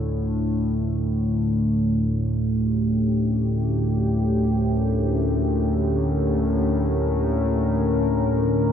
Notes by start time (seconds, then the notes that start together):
Already playing: D2 A2 D4 F4 C#5
1.98 D3
2.40 G4
2.77 C#4
4.43 A#4